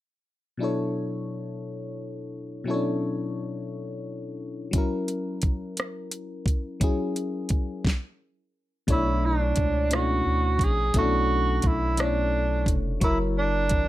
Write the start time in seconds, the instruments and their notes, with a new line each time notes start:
0.57 fm electric piano B2 F#3 D4 E4
0.63 fm electric piano A4 C#5
2.64 fm electric piano B2 F#3 C#4 E4
2.70 fm electric piano D4 A4 C#5
4.71 fm electric piano F#3 C#4, kick, closed hi-hat
4.76 fm electric piano E4 A#4
5.08 closed hi-hat
5.42 kick, closed hi-hat
5.77 cross-stick, closed hi-hat
6.11 closed hi-hat
6.46 kick, closed hi-hat
6.80 fm electric piano F#3 C#4 E4 G#4, kick, closed hi-hat
7.16 closed hi-hat
7.49 kick, closed hi-hat
7.85 kick, snare
8.87 analog synth bass B1, fm electric piano B2 A3 D4 E4 C#5, kick, closed hi-hat
8.92 tenor saxophone E4
9.26 tenor saxophone D4
9.56 analog synth bass C#2, kick, closed hi-hat
9.91 fm electric piano B2 A3 C#4 E4 C#5, tenor saxophone F#4, cross-stick, closed hi-hat
9.99 fm electric piano D4
10.27 analog synth bass D2
10.59 analog synth bass A#1, kick, closed hi-hat
10.64 tenor saxophone G#4
10.94 analog synth bass B1, fm electric piano B2 A3 C#4 E4 A4, kick, closed hi-hat
10.98 tenor saxophone F#4
11.02 fm electric piano D4
11.61 analog synth bass B1, tenor saxophone F#4, kick, closed hi-hat
11.67 tenor saxophone E4
11.97 fm electric piano B2 A3 C#4 E4 C#5, tenor saxophone D4, cross-stick, closed hi-hat
12.05 fm electric piano D4
12.66 analog synth bass F1, kick, closed hi-hat
13.00 analog synth bass F#1, fm electric piano F#3 E4 A#4 C#5, tenor saxophone E4, kick, closed hi-hat
13.38 tenor saxophone D4
13.69 analog synth bass G#1, kick, closed hi-hat